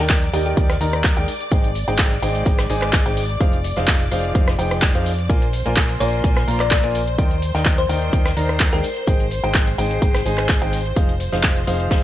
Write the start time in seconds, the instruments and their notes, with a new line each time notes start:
Already playing: string machine D5 D6
0.00 fingered electric bass D#2, grand piano D#3 D#4 A#4 D5 G5, synth pluck A#4
0.10 kick, snare, clap, closed hi-hat, tambourine
0.22 closed hi-hat
0.33 fingered electric bass D#2, grand piano D#3 D#4 A#4 D5 G5, synth pluck G4, closed hi-hat, open hi-hat, tambourine
0.46 synth pluck G4, closed hi-hat, tambourine
0.57 fingered electric bass D#2, grand piano D#3 D#4 A#4 D5 G5, kick, closed hi-hat, tambourine
0.70 cross-stick, snare, closed hi-hat
0.81 fingered electric bass D#2, grand piano D#3 D#4 A#4 D5 A#5, closed hi-hat, open hi-hat, tambourine
0.93 cross-stick, closed hi-hat, tambourine
1.04 kick, snare, clap, closed hi-hat, tambourine
1.17 fingered electric bass D#2, grand piano G#3 D#4 A#4 D5 G5, closed hi-hat
1.28 closed hi-hat, open hi-hat, tambourine
1.41 closed hi-hat, tambourine
1.51 fingered electric bass G#1, grand piano G#3 D#4 G#4 C5 G5, kick, closed hi-hat, tambourine
1.64 closed hi-hat
1.75 closed hi-hat, open hi-hat, tambourine
1.88 fingered electric bass G#1, grand piano G#3 D#4 G#4 C5 G5, closed hi-hat, tambourine
1.98 kick, snare, clap, closed hi-hat, tambourine
2.11 closed hi-hat
2.22 fingered electric bass G#1, grand piano G#3 D#4 G#4 C5 G5, closed hi-hat, open hi-hat, tambourine
2.35 closed hi-hat, tambourine
2.46 grand piano G#3 D#4 G#4 C5 G5, kick, closed hi-hat, tambourine
2.58 cross-stick, snare, closed hi-hat
2.70 fingered electric bass G#1, grand piano G#3 D#4 G#4 C5 G#5, closed hi-hat, open hi-hat, tambourine
2.82 cross-stick, clap, closed hi-hat, tambourine
2.93 kick, snare, clap, closed hi-hat, tambourine
3.06 fingered electric bass G#1, grand piano G#3 D#4 G#4 C5 G5, closed hi-hat
3.17 closed hi-hat, open hi-hat, tambourine
3.29 closed hi-hat, tambourine
3.41 fingered electric bass F1, grand piano F3 D#4 G#4 C5 F5, kick, closed hi-hat, tambourine
3.53 closed hi-hat
3.64 closed hi-hat, open hi-hat, tambourine
3.76 fingered electric bass F1, grand piano F3 D#4 G#4 C5 F5, snare, closed hi-hat, tambourine
3.88 kick, snare, clap, closed hi-hat, tambourine
4.00 closed hi-hat
4.11 fingered electric bass F1, grand piano F3 D#4 G#4 C5 F5, closed hi-hat, open hi-hat, tambourine
4.24 closed hi-hat, tambourine
4.35 fingered electric bass F1, grand piano F3 D#4 G#4 C5 F5, kick, closed hi-hat, tambourine
4.48 cross-stick, snare, closed hi-hat
4.59 fingered electric bass F1, grand piano F3 D#4 G#4 C5 G5, closed hi-hat, open hi-hat, tambourine
4.71 cross-stick, closed hi-hat, tambourine
4.81 kick, snare, clap, closed hi-hat, tambourine
4.95 fingered electric bass F2, grand piano F3 D#4 G#4 C5 F5, closed hi-hat
5.06 closed hi-hat, open hi-hat, tambourine
5.19 closed hi-hat, tambourine
5.30 fingered electric bass A#1, grand piano A#3 F4 A#4 D5 G#5, string machine C5 C6, kick, closed hi-hat, tambourine
5.42 closed hi-hat
5.53 closed hi-hat, open hi-hat, tambourine
5.66 fingered electric bass A#1, grand piano A#3 F4 A#4 D5 G#5, closed hi-hat, tambourine
5.77 kick, snare, clap, closed hi-hat, tambourine
5.89 closed hi-hat
6.00 fingered electric bass A#1, grand piano A#3 F4 A#4 D5 G#5, synth pluck D5, closed hi-hat, open hi-hat, tambourine
6.13 closed hi-hat, tambourine
6.24 fingered electric bass A#1, grand piano A#3 F4 A#4 D5 G#5, kick, closed hi-hat, tambourine
6.36 cross-stick, snare, closed hi-hat
6.48 fingered electric bass A#1, grand piano A#3 F4 A#4 D5 A#5, closed hi-hat, open hi-hat, tambourine
6.60 synth pluck D5, cross-stick, clap, closed hi-hat, tambourine
6.71 kick, snare, clap, closed hi-hat, tambourine
6.84 fingered electric bass A#1, grand piano A#3 F4 A#4 D5 G#5, closed hi-hat
6.94 closed hi-hat, open hi-hat, tambourine
7.07 closed hi-hat, tambourine
7.18 fingered electric bass D#2, grand piano D#3 D#4 A#4 D5 G5, kick, closed hi-hat, tambourine
7.31 closed hi-hat
7.42 closed hi-hat, open hi-hat, tambourine
7.55 fingered electric bass D#2, grand piano D#3 D#4 A#4 D5 G5, snare, closed hi-hat, tambourine
7.65 kick, snare, clap, closed hi-hat, tambourine
7.78 synth pluck C5, closed hi-hat
7.89 fingered electric bass D#2, grand piano D#3 D#4 A#4 D5 G5, closed hi-hat, open hi-hat, tambourine
8.02 closed hi-hat, tambourine
8.13 fingered electric bass D#2, grand piano D#3 D#4 A#4 D5 G5, kick, closed hi-hat, tambourine
8.26 cross-stick, snare, closed hi-hat
8.36 fingered electric bass D#2, grand piano D#3 D#4 A#4 D5 A#5, closed hi-hat, open hi-hat, tambourine
8.49 cross-stick, closed hi-hat, tambourine
8.60 kick, snare, clap, closed hi-hat, tambourine
8.73 fingered electric bass D#2, grand piano G#3 D#4 A#4 D5 G5, synth pluck A#4, closed hi-hat
8.84 closed hi-hat, open hi-hat, tambourine
8.96 closed hi-hat, tambourine
9.07 fingered electric bass G#1, grand piano G#3 D#4 G#4 C5 G5, kick, closed hi-hat, tambourine
9.20 closed hi-hat
9.31 closed hi-hat, open hi-hat, tambourine
9.44 fingered electric bass G#1, grand piano G#3 D#4 G#4 C5 G5, closed hi-hat, tambourine
9.54 kick, snare, clap, closed hi-hat, tambourine
9.67 closed hi-hat
9.78 fingered electric bass G#1, grand piano G#3 D#4 G#4 C5 G5, closed hi-hat, open hi-hat, tambourine
9.91 closed hi-hat, tambourine
10.02 fingered electric bass G#1, grand piano G#3 D#4 G#4 C5 G5, kick, closed hi-hat, tambourine
10.14 cross-stick, snare, closed hi-hat
10.26 fingered electric bass G#1, grand piano G#3 D#4 G#4 C5 G#5, closed hi-hat, open hi-hat, tambourine
10.38 cross-stick, clap, closed hi-hat, tambourine
10.49 kick, snare, clap, closed hi-hat, tambourine
10.62 fingered electric bass G#1, grand piano G#3 D#4 G#4 C5 G5, closed hi-hat
10.73 closed hi-hat, open hi-hat, tambourine
10.85 closed hi-hat, tambourine
10.96 fingered electric bass F1, grand piano F3 D#4 G#4 C5 F5, kick, closed hi-hat, tambourine
11.09 closed hi-hat
11.20 closed hi-hat, open hi-hat, tambourine
11.32 fingered electric bass F1, grand piano F3 D#4 G#4 C5 F5, snare, closed hi-hat, tambourine
11.42 kick, snare, clap, closed hi-hat, tambourine
11.56 closed hi-hat
11.67 fingered electric bass F1, grand piano F3 D#4 G#4 C5 F5, closed hi-hat, open hi-hat, tambourine
11.80 closed hi-hat, tambourine
11.91 grand piano F3 D#4 G#4 C5 F5, kick, snare, closed hi-hat, tambourine